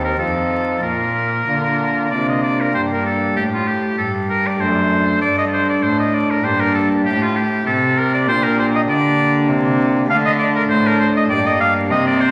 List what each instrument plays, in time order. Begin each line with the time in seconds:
Already playing: pipe organ D#2 C4 D#4 G4, cello D#2
0.04 oboe A#4
0.18 pipe organ F2 C4 D#4 F4, cello F2, oboe A4
0.82 pipe organ A#2, cello A#2, oboe A#4
1.47 pipe organ D3 A#3 D4 F4, cello D3
2.11 cello C3, pipe organ C3 A#3 D4 F4, oboe D5
2.28 oboe D#5
2.43 oboe D5
2.61 oboe A#4
2.70 pipe organ A#3 D4 G4
2.75 cello G2, pipe organ G2, oboe C5
2.93 oboe A#4
3.06 oboe A4
3.37 cello A2, pipe organ A2, oboe G4
3.54 oboe F4
3.67 oboe G4
3.98 pipe organ G2, cello G2, oboe A4
4.30 oboe A#4
4.47 oboe D5
4.56 pipe organ A3 D4 A4
4.60 cello F#2, pipe organ F#2, oboe C5
5.22 cello G2, pipe organ G2, oboe D5
5.38 oboe D#5
5.54 oboe C5
5.69 oboe D5
5.83 cello A2, pipe organ A2, oboe C5
5.99 oboe D#5
6.14 oboe D5
6.31 oboe A#4
6.40 cello G2, pipe organ A#3 D4 G4, oboe C5
6.45 pipe organ G2
6.61 oboe A#4
6.75 oboe A4
7.06 pipe organ A2, cello A2, oboe G4
7.22 oboe F4
7.36 oboe G4
7.67 cello C3, pipe organ C3, oboe A4
7.98 oboe A#4
8.14 oboe D5
8.23 cello A#2, pipe organ A#3 D4 G4
8.27 pipe organ A#2, oboe C5
8.44 oboe A#4
8.59 oboe C5
8.75 oboe D#5
8.88 cello D3, pipe organ D3, oboe D5
9.49 cello C3, pipe organ C3
10.05 pipe organ A3 D4 A4
10.09 cello D3, pipe organ D3, oboe F5
10.25 oboe D#5
10.39 oboe D5
10.56 oboe A#4
10.69 cello A2, pipe organ A2, oboe C5
10.87 oboe A#4
11.00 oboe C5
11.17 oboe D#5
11.26 cello G2, pipe organ A#3 D4 G4, oboe D5
11.31 pipe organ G2
11.46 oboe D#5
11.60 oboe F5
11.86 cello C3, pipe organ A#3 C4 G4
11.91 pipe organ C3, oboe D#5
12.07 oboe D5
12.21 oboe C5